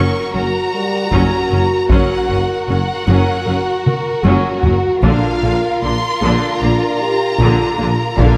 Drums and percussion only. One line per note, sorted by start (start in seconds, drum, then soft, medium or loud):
1.12 taiko medium
1.89 taiko medium
3.86 taiko mid medium
4.25 taiko high medium
4.63 taiko low medium
5.03 taiko medium
7.39 taiko medium
8.18 taiko medium